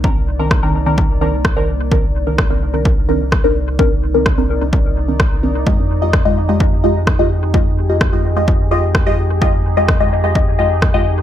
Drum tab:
SD |--r---r-|--r---r-|--r---r-|--r---r-|
BD |o-o-o-o-|o-o-o-o-|o-o-o-o-|o-o-o-o-|

SD |--r---r-|--r---r-|
BD |o-o-o-o-|o-o-o-o-|